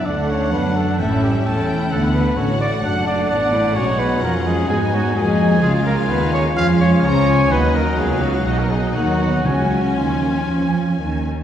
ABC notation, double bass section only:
X:1
M:4/4
L:1/8
Q:1/4=128
K:D
V:1 name="Double bass section" clef=bass
D,,2 F,,2 A,,,2 E,,,2 | D,,2 A,,,2 F,,,2 A,,,2 | [K:C#mix] B,,,2 E,,2 G,,2 E,,2 | C,,2 D,,2 E,,2 C,,2 |
D,,2 C,,2 B,,,2 D,,2 | C,,2 D,,2 E,,2 D,,2 |]